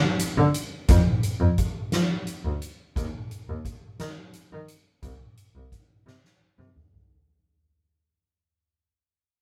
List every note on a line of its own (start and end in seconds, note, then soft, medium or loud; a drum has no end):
0.19 closed hi-hat medium
0.37 0.45 D3 medium
0.54 closed hi-hat medium
0.88 0.97 F2 medium
0.88 kick loud
0.88 closed hi-hat medium
1.23 closed hi-hat medium
1.40 1.48 F2 medium
1.58 kick medium
1.58 closed hi-hat medium
1.92 2.02 F3 medium
1.92 snare loud
1.92 closed hi-hat medium
2.27 closed hi-hat medium
2.45 2.53 D2 medium
2.62 closed hi-hat medium
2.96 3.04 D#2 medium
2.96 kick loud
2.96 closed hi-hat medium
3.31 closed hi-hat medium
3.48 3.56 D#2 medium
3.65 kick medium
3.65 closed hi-hat medium
3.99 4.08 D#3 medium
3.99 snare loud
3.99 closed hi-hat medium
4.33 closed hi-hat medium
4.53 4.61 D#3 medium
4.68 closed hi-hat medium
5.03 5.11 C2 medium
5.03 kick loud
5.03 closed hi-hat medium
5.37 closed hi-hat medium
5.55 5.63 C2 medium
5.72 kick medium
5.72 closed hi-hat medium
6.06 6.14 C3 medium
6.06 snare medium
6.24 snare medium
6.58 6.66 C3 medium
6.58 mid tom medium
6.76 mid tom medium
6.93 floor tom medium